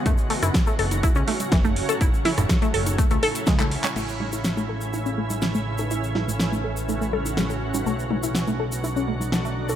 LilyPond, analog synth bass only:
\new Staff \with { instrumentName = "Analog synth bass" } { \clef bass \time 4/4 \key a \major \tempo 4 = 123 fis,,16 r8 fis,,16 r8 fis,,8 r16 cis,16 r8 fis,,8 r8 | fis,,16 r8 fis,,16 r8 fis,,8 r16 cis,16 r8 cis,8 r8 | a,,1~ | a,,1 |
b,,1 | }